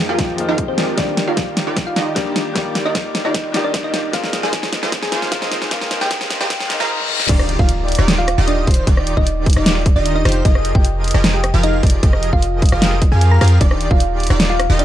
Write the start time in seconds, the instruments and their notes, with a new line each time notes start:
Already playing: analog synth pad F2 D#3 G#3 A#3 G5, grand piano F3 G#3 A#3 D#4 G4 G5
0.09 supersaw synth F3 F4 G4 G#4 A#4 D#5, synth pluck F4 F5
0.19 kick, snare, closed hi-hat
0.36 grand piano F3 G#3 A#3 D#4, closed hi-hat
0.40 grand piano F4
0.49 supersaw synth F3 F4 G4 G#4 A#4 F5, synth pluck D#4 D#5
0.58 kick, closed hi-hat
0.68 synth pluck C4 C5
0.78 supersaw synth F3 F4 G4 G#4 A#4 D5, snare, closed hi-hat
0.96 analog synth pad D#2 D5, grand piano D#3 G3 A#3 D5, supersaw synth D#3 D#4 F4 G4 D5, synth pluck D4 D5, kick, snare, closed hi-hat, riser
1.00 grand piano G4
1.17 snare, closed hi-hat
1.28 supersaw synth D#3 D#4 F4 G4 D5, synth pluck F4 F5
1.37 kick, snare, closed hi-hat
1.57 snare, closed hi-hat
1.67 supersaw synth D#3 D#4 F4 G4 D5
1.77 kick, snare, closed hi-hat
1.87 synth pluck F4 F5
1.96 supersaw synth D#3 D#4 F4 G4 D#5, snare, closed hi-hat
2.15 grand piano D#3 G3 A#3 D4 G4, synth pluck D4 D5, kick, snare, closed hi-hat
2.26 supersaw synth D#3 D#4 F4 G4 D5
2.36 snare, closed hi-hat
2.54 grand piano D#3 G3 A#3 D5, supersaw synth D#3 D#4 F4 G4 D5, kick, snare, closed hi-hat
2.58 grand piano G4
2.75 snare, closed hi-hat
2.85 supersaw synth D#3 D#4 F4 G4 D5, synth pluck D#4 D#5
2.95 kick, snare, closed hi-hat
3.15 snare, closed hi-hat
3.25 supersaw synth D#3 D#4 F4 G4 D5, synth pluck D#4 D#5
3.34 kick, snare, closed hi-hat
3.52 grand piano D#3 G3 A#3 D4 G4, supersaw synth D#3 D#4 F4 G4 D#5, snare, closed hi-hat
3.64 synth pluck D4 D5
3.74 kick, snare, closed hi-hat
3.84 supersaw synth D#3 D#4 F4 G4 D5, synth pluck D#4 D#5
3.94 snare, closed hi-hat
4.11 analog synth pad A#2 G#3 C4 D#4, grand piano D#3 G#3 A#3 C4 F4, supersaw synth A#3 F4 G#4 C5 D#5, synth pluck F4 F5, kick, snare, closed hi-hat
4.24 snare
4.33 snare, closed hi-hat
4.43 supersaw synth A#3 F4 G#4 C5 D#5, synth pluck G#4 G#5, snare
4.53 kick, snare, closed hi-hat
4.63 snare
4.73 snare, closed hi-hat
4.83 supersaw synth A#3 F4 G#4 C5 D#5, snare
4.92 kick, snare, closed hi-hat
5.03 synth pluck G#4 G#5, snare
5.12 supersaw synth A#3 F4 G#4 C5 F5, snare, closed hi-hat
5.22 snare
5.31 grand piano D#3 G#3 A#3 C4 F4, synth pluck F4 F5, kick, snare, closed hi-hat
5.42 supersaw synth A#3 F4 G#4 C5 D#5, snare
5.52 snare, closed hi-hat
5.62 snare
5.69 grand piano D#3 G#3 A#3 C4 F4, supersaw synth A#3 F4 G#4 C5 D#5, kick, snare, closed hi-hat
5.81 snare
5.91 snare, closed hi-hat
6.01 supersaw synth A#3 F4 G#4 C5 D#5, synth pluck G4 G5, snare
6.11 kick, snare, closed hi-hat
6.21 snare
6.30 snare, closed hi-hat
6.41 supersaw synth A#3 F4 G#4 C5 D#5, synth pluck G4 G5, snare
6.50 kick, snare, closed hi-hat, reverse cymbal
6.60 snare
6.68 grand piano D#3 G#3 A#3 C4 D#4, snare, closed hi-hat
6.80 supersaw synth A#3 F4 G#4 C5 F5, synth pluck A#4 A#5, snare
7.00 high tom
7.09 mid tom
7.20 snare
7.29 808-style bass D#1, supersaw synth D#3 D#4 F4 G4 D5, synth pluck D4 D5, digital synth lead D5, kick, closed hi-hat, crash, impact
7.39 cross-stick
7.49 closed hi-hat
7.59 808-style bass D#1, supersaw synth D#3 D#4 F4 G4 D5, synth pluck F4 F5, digital synth lead D5, kick
7.69 closed hi-hat
7.88 closed hi-hat
7.92 closed hi-hat
7.95 808-style bass D#1, supersaw synth D#3 D#4 F4 G4 D5, digital synth lead D5, cross-stick, closed hi-hat
8.08 snare, closed hi-hat
8.18 synth pluck F4 F5
8.28 cross-stick, closed hi-hat
8.38 808-style bass D#1, supersaw synth D#3 D#4 F4 G4 D#5, digital synth lead D#5
8.48 synth pluck D4 D5, closed hi-hat
8.67 808-style bass D#1, supersaw synth D#3 D#4 F4 G4 C5, digital synth lead C5, kick, closed hi-hat
8.71 closed hi-hat
8.74 closed hi-hat
8.87 808-style bass D#1, supersaw synth D#3 D#4 F4 G4 D5, digital synth lead D5, kick, closed hi-hat
8.97 cross-stick
9.07 closed hi-hat
9.17 808-style bass D#1, supersaw synth D#3 D#4 G4 D5, synth pluck D#4 D#5, digital synth lead D5, kick
9.27 closed hi-hat
9.46 kick, closed hi-hat
9.50 closed hi-hat
9.53 808-style bass D#1, supersaw synth D#3 D#4 F4 G4 D5, synth pluck D#4 D#5, digital synth lead D5, cross-stick, closed hi-hat
9.66 snare, closed hi-hat
9.86 kick, closed hi-hat
9.96 808-style bass D#1, supersaw synth D#3 D#4 F4 G4 D#5, synth pluck D4 D5, digital synth lead D#5
10.06 closed hi-hat
10.16 synth pluck D#4 D#5
10.25 808-style bass F1, supersaw synth D#3 D#4 F4 G4 C5, digital synth lead C5, cross-stick, closed hi-hat
10.29 closed hi-hat
10.32 closed hi-hat
10.45 808-style bass F1, supersaw synth F3 F4 G4 G#4 A#4 D#5, synth pluck D#4 D#5, digital synth lead D#5, kick, closed hi-hat
10.55 cross-stick
10.65 closed hi-hat
10.75 808-style bass F1, supersaw synth F3 F4 G#4 A#4, synth pluck G4 G5, digital synth lead D#5, kick
10.85 closed hi-hat
11.04 closed hi-hat
11.08 closed hi-hat
11.11 808-style bass F1, supersaw synth F3 F4 G4 G#4 A#4 D#5, digital synth lead D#5, cross-stick, closed hi-hat
11.24 snare, closed hi-hat
11.34 synth pluck G4 G5
11.44 cross-stick, closed hi-hat
11.54 808-style bass F1, supersaw synth F3 F4 G4 G#4 A#4 F5, digital synth lead F5
11.63 synth pluck D#4 D#5, closed hi-hat
11.83 808-style bass F1, supersaw synth F3 F4 G4 G#4 A#4 D5, digital synth lead D5, kick, closed hi-hat
11.87 closed hi-hat
11.90 closed hi-hat
12.03 808-style bass F1, supersaw synth F3 F4 G4 G#4 A#4 D#5, digital synth lead D#5, kick, closed hi-hat
12.13 cross-stick
12.23 closed hi-hat
12.33 808-style bass F1, supersaw synth F3 A#4 D#5, synth pluck F4 F5, digital synth lead D#5, kick
12.42 closed hi-hat
12.62 kick, closed hi-hat
12.66 closed hi-hat
12.69 808-style bass F1, supersaw synth F3 F4 G4 G#4 A#4 D#5, synth pluck F4 F5, digital synth lead D#5, cross-stick, closed hi-hat
12.82 snare, closed hi-hat
13.02 kick, closed hi-hat
13.12 808-style bass F2, supersaw synth F3 F4 G4 G#4 A#4 F5, synth pluck G#4 G#5, digital synth lead F5
13.21 closed hi-hat
13.31 synth pluck A#4 A#5
13.41 808-style bass F2, supersaw synth F3 F4 G4 G#4 A#4 F5, digital synth lead F5, cross-stick, closed hi-hat
13.45 closed hi-hat
13.48 closed hi-hat
13.61 808-style bass D#1, supersaw synth D#3 D#4 F4 D5, synth pluck D4 D5, digital synth lead D5, kick, closed hi-hat
13.71 cross-stick
13.81 closed hi-hat
13.91 808-style bass D#1, supersaw synth D#3 D#4 F4 D5, synth pluck F4 F5, digital synth lead D5, kick
14.00 closed hi-hat
14.20 closed hi-hat
14.23 closed hi-hat
14.27 808-style bass D#1, supersaw synth D#3 D#4 F4 G4 D5, digital synth lead D5, cross-stick, closed hi-hat
14.40 snare, closed hi-hat
14.50 synth pluck F4 F5
14.60 cross-stick, closed hi-hat
14.70 808-style bass D#1, supersaw synth D#3 D#4 F4 G4 D#5, digital synth lead D#5
14.79 synth pluck D4 D5, closed hi-hat